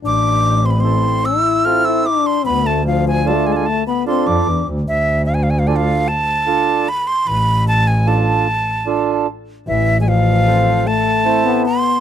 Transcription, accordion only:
X:1
M:3/4
L:1/8
Q:1/4=75
K:none
V:1 name="Accordion"
z2 [CEA] z [CEA] z | z2 [DFA] z [DFA] z | z2 [DFA] z [DFA] z | z2 [DFA] z [DFA] z |
z2 [CA] z [CEA] z |]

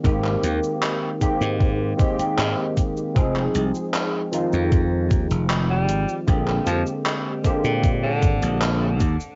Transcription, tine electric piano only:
X:1
M:4/4
L:1/8
Q:1/4=77
K:Bbmix
V:1 name="Tine electric piano"
[E,A,B,CG]3 [E,A,B,CG]2 [E,A,B,CG]3 | [F,A,CEA]3 [E,F,CEF]4- [E,F,CEF] | [D,A,B,CG]3 [D,A,B,CG]4 z |]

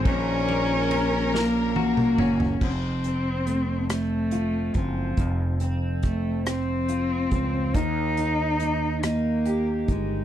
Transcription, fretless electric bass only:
X:1
M:6/8
L:1/8
Q:3/8=47
K:Fphr
V:1 name="Fretless electric bass" clef=bass
B,,,4- B,,, G,,, | F,,,4- F,,, G,,, | F,,,4- F,,, D,, | E,,4- E,, =G,,, |]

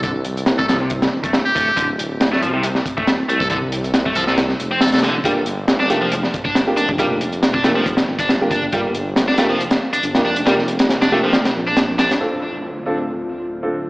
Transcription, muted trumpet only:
X:1
M:4/4
L:1/16
Q:"Swing 16ths" 1/4=138
K:Dm
V:1 name="Muted trumpet"
A z4 A A z6 G3- | G z12 z2 A | A z4 z A A z4 A A z2 | z16 |
z16 | z16 | z16 | z16 |]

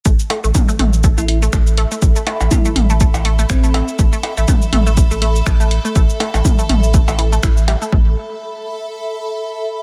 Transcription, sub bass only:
X:1
M:4/4
L:1/16
Q:"Swing 16ths" 1/4=122
K:Clyd
V:1 name="Sub bass" clef=bass
A,,, z2 A,,, z2 A,,,3 A,,,3 A,,,3 z | A,,, z2 A,,, z2 A,,,3 A,,,3 A,,,3 z | A,,, z2 A,,, z2 A,,,3 A,,,3 A,,,3 z | A,,, z2 A,,, z2 A,,,3 A,,,3 A,,,3 z |
A,,,2 z12 z2 |]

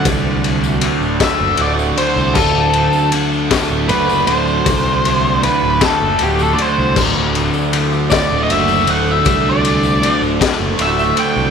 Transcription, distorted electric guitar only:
X:1
M:6/8
L:1/8
Q:3/8=52
K:Dmix
V:1 name="Distorted electric guitar" clef=bass
[D,,D,A,F]2 D, A, F D, | D,,2 D, A, F D, | D,,2 D, A, F D, | D,,2 D, A, F D, |
D,,2 D, A, F D, |]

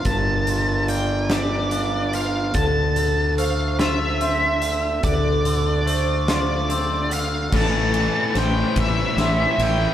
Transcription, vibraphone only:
X:1
M:6/8
L:1/8
Q:3/8=48
K:Dm
V:1 name="Vibraphone"
B2 d2 f2 | A2 c2 e2 | A2 c2 e'2 | A2 c2 e2 |]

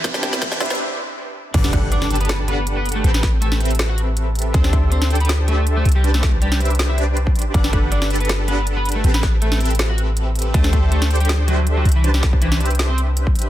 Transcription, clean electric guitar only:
X:1
M:4/4
L:1/16
Q:"Swing 16ths" 1/4=160
K:G
V:1 name="Clean electric guitar"
z [G,G]2 z [E,E]2 z8 z2 | [Dd]2 z2 [Dd]2 z [B,B]2 z [B,B]2 z [B,B] z [A,A] | z [B,B]2 z [A,A]2 z3 [Ff] z6 | [Cc]2 z2 [Cc]2 z [B,B]2 z [A,A]2 z [A,A] z [G,G] |
z [A,A]2 z [G,G]2 z3 [Ee] z6 | [Dd]2 z2 [Dd]2 z [B,B]2 z [B,B]2 z [B,B] z [A,A] | z [B,B]2 z [A,A]2 z3 [Ff] z6 | [A,A]2 z2 [A,A]2 z [G,G]2 z [F,F]2 z [F,F] z [E,E] |
z [G,G]2 z [E,E]2 z3 [Cc] z6 |]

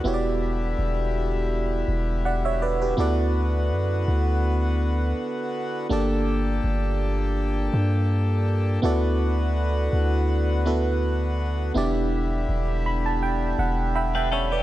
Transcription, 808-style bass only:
X:1
M:4/4
L:1/8
Q:"Swing 16ths" 1/4=82
K:D
V:1 name="808-style bass" clef=bass
E,,,2 E,,,3 E,,,3 | D,,2 F,, D,,3 z2 | G,,,2 G,,,3 G,,3 | D,,3 D,,4- D,, |
E,,,2 E,,,3 E,,,3 |]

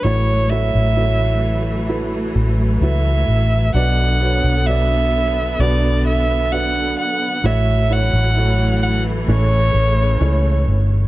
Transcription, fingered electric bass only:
X:1
M:4/4
L:1/16
Q:1/4=65
K:F#phr
V:1 name="Fingered electric bass" clef=bass
A,,,3 A,,,6- A,,, A,,,2 C,,2 A,,,2 | B,,,3 B,,,4- B,,, B,,,6 z2 | A,,,3 A,,,4- A,,, A,,,2 A,,,2 C,,2 G,,,2 |]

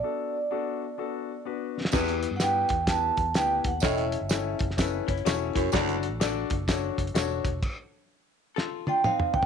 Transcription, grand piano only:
X:1
M:4/4
L:1/8
Q:"Swing" 1/4=126
K:Edor
V:1 name="Grand piano"
[B,DFA] z [B,DFA] z [B,DFA] z [B,DFB] z | [B,EGB] z [B,EGB] z [B,EGB] z [B,EGB] z | [CEAc] z [CEAc] z [CEAB] z [CEAc] z | [DFAd] z [DFAd] z [DFAc] z [DFAc] z |
z8 |]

